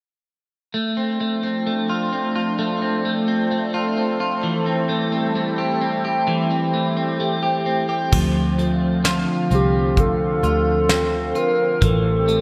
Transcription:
0.74 F3 A3 C4 D4 A4
0.97 C4
1.20 A3
1.43 C4
1.67 A3
1.89 F4
2.13 C4
2.36 F4
2.59 A3
2.82 C4
3.05 A3
3.28 C4
3.51 A3
3.74 F4
3.97 C4
4.20 F4
4.43 E3 G3 E4
4.66 C4
4.89 A3
5.12 C4
5.35 A3
5.58 G4
5.81 C4
6.05 G4
6.27 E3 G4
6.51 C4
6.74 A3
6.97 C4
7.20 A3
7.43 G4
7.66 C4
7.89 G4
8.12 D2 D3 F3 C4 F4, kick, crash
8.58 A3, closed hi-hat
9.04 F4, snare, closed hi-hat
9.51 C2 C4 G4, closed hi-hat
9.97 A4, kick, closed hi-hat
10.43 D2 F4, closed hi-hat
10.89 C4, snare, closed hi-hat
11.35 F4 A#4, closed hi-hat
11.82 A1 E3 G3 G4 A4, kick, closed hi-hat
12.28 A3, closed hi-hat

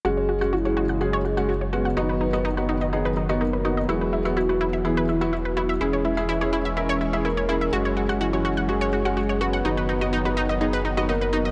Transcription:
0.05 F#1 C#3 F#3 G#3 C#4 F#4 G#4
0.17 C#5
0.29 F#4
0.41 G#3 C#4 F#4 F#5
0.53 E4 F#4
0.65 G#3 C#4 F#4 C#5
0.77 F#4
0.89 F#5
1.01 G#3 C#4 F#4 G#4
1.13 C#5
1.25 F#4 G#4
1.37 G#3 C#4 F#4 F#5
1.49 F#4
1.61 C#5
1.73 G#3 C#4 F#4 B4
1.85 F#5
1.97 F#1 D#3 B3 D#4 F#4
2.09 B4
2.21 D#4
2.33 B3 D#4 F#4 D#5
2.45 D#4
2.57 B3 D#4 F#4 B4
2.69 D#4
2.81 D#5
2.93 B3 D#4 G#4
3.05 B4
3.17 D#4
3.29 B3 D#4 F#4 D#5
3.41 D#4 A#4
3.53 B4
3.65 B3 D#4 F#4
3.77 D#5
3.89 E1 E3 B3 E4 F#4 G#4
4.01 B4
4.13 E4
4.25 B3 E4 F#4 E5
4.37 E4 F#4
4.49 B3 E4 F#4 B4
4.61 E4
4.73 E5
4.85 B3 E4 G#4
4.97 B4
5.09 E4
5.21 B3 E4 F#4 E5
5.33 E4 F#4
5.45 B4
5.57 B3 E4 F#4
5.69 E5
5.81 E1 G#3 C#4 E4 G#4
5.93 C#5
6.05 E4 E5
6.17 C#4 E4 G#4 E5
6.29 E4
6.41 C#4 E4 G#4 C#5
6.53 E4
6.65 E5
6.77 C#4 E4 A#4
6.89 C#5
7.01 E4
7.13 C#4 E4 G#4 E5
7.25 E4 A#4
7.37 C#5
7.49 C#4 E4 G#4
7.61 E5
7.73 F#1 F#3 G#3 C#4 F#4 G#4
7.85 C#5
7.97 F#4
8.09 G#3 C#4 F#4 F#5
8.21 E4 F#4
8.33 G#3 C#4 F#4 C#5
8.45 F#4
8.57 F#5
8.69 G#3 C#4 F#4 G#4
8.81 C#5
8.93 F#4 G#4
9.05 G#3 C#4 F#4 F#5
9.17 F#4
9.29 C#5
9.41 G#3 C#4 F#4 B4
9.53 F#5
9.65 F#1 D#3 B3 D#4 F#4
9.77 B4
9.89 D#4
10.01 B3 D#4 F#4 D#5
10.13 D#4
10.25 B3 D#4 F#4 B4
10.37 D#4
10.49 D#5
10.61 B3 D#4 G#4
10.73 B4
10.85 D#4
10.97 B3 D#4 F#4 D#5
11.09 D#4 A#4
11.21 B4
11.33 B3 D#4 F#4
11.45 D#5

